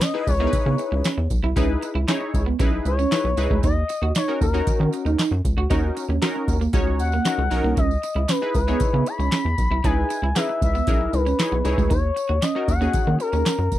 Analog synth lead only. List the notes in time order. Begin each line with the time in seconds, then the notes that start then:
0.01 D#5
0.21 D#5
0.28 C#5
2.87 C#5
3.64 D#5
4.16 C#5
4.41 A#4
7.00 F#5
7.77 D#5
8.29 B4
8.55 B4
9.07 B5
9.84 G#5
10.36 E5
10.62 E5
11.14 B4
11.91 C#5
12.42 D#5
12.68 F#5
13.20 A#4